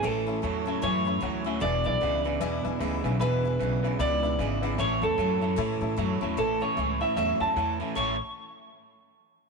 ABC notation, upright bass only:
X:1
M:4/4
L:1/8
Q:"Swing" 1/4=151
K:A
V:1 name="Upright bass" clef=bass
A,,,2 E,,2 F,,2 D,,2 | E,,, B,,, C,,2 E,, E,, D,, B,,, | E,,,2 B,,,2 C,,2 G,,,2 | A,,, E,, F,,2 A,, A,, F,, E,, |
A,,,2 C,,2 E,, E,, E,,2 | A,,, z6 z |]